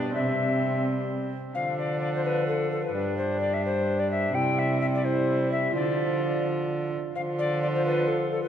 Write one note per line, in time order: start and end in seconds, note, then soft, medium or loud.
0.00 0.16 B2 medium
0.00 0.14 G3 medium
0.00 0.12 D4 medium
0.00 0.14 D5 medium
0.14 1.36 C3 soft
0.14 1.30 G3 soft
0.14 1.33 C4 soft
0.14 0.84 E5 medium
1.54 2.92 D3 medium
1.54 2.91 F3 medium
1.54 2.91 D4 medium
1.54 1.77 F5 medium
1.78 1.99 D5 medium
2.00 2.13 D5 medium
2.15 2.24 C5 medium
2.24 2.47 B4 medium
2.48 2.71 A4 medium
2.71 2.84 A4 medium
2.83 3.17 B4 medium
2.94 4.31 G2 medium
2.94 4.31 G3 medium
2.94 4.35 D4 soft
3.17 3.40 C5 medium
3.40 3.55 D5 medium
3.54 3.64 E5 medium
3.65 4.01 C5 medium
4.00 4.10 D5 medium
4.11 4.36 E5 medium
4.33 5.72 C3 medium
4.33 5.02 G3 medium
4.33 5.03 E4 medium
4.33 4.60 G5 medium
4.59 4.81 E5 medium
4.81 4.86 E5 medium
4.95 5.06 D5 medium
5.03 5.73 G3 medium
5.03 5.73 E4 medium
5.03 5.51 C5 medium
5.52 5.75 E5 medium
5.73 6.93 D3 medium
5.73 6.90 F3 medium
5.73 6.93 F4 medium
5.73 6.44 D5 medium
7.15 8.48 D3 medium
7.15 8.48 F3 medium
7.15 8.48 F4 medium
7.15 7.21 F5 medium
7.39 7.62 D5 medium
7.62 7.68 D5 medium
7.75 7.85 C5 medium
7.85 8.09 B4 medium
8.08 8.31 A4 medium
8.31 8.42 A4 medium
8.43 8.48 B4 medium